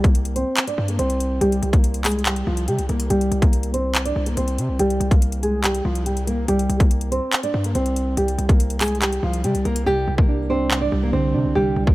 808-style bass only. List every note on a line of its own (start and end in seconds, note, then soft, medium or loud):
0.00 0.44 C2 loud
0.78 0.98 G2 loud
0.99 1.40 C2 loud
1.41 1.62 C2 loud
1.62 2.44 C2 loud
2.47 2.70 C2 loud
2.68 2.80 C3 loud
2.79 2.89 C2 loud
2.89 3.10 C2 loud
3.10 3.31 C2 loud
3.32 4.13 C2 loud
4.16 4.36 C2 loud
4.37 4.60 C2 loud
4.58 4.70 C3 loud
4.69 4.79 C2 loud
4.79 5.00 C2 loud
5.00 5.82 C2 loud
5.85 6.46 C2 loud
6.48 6.69 C2 loud
6.69 7.20 C2 loud
7.54 7.74 G2 loud
7.75 8.16 C2 loud
8.17 8.38 C2 loud
8.38 9.20 C2 loud
9.23 9.46 C2 loud
9.44 9.56 C3 loud
9.55 9.65 C2 loud
9.65 9.86 C2 loud
9.86 10.07 C2 loud
10.08 10.89 C2 loud
10.92 11.12 C2 loud
11.13 11.36 C2 loud
11.34 11.46 C3 loud
11.45 11.55 C2 loud
11.55 11.76 C2 loud
11.76 11.95 C2 loud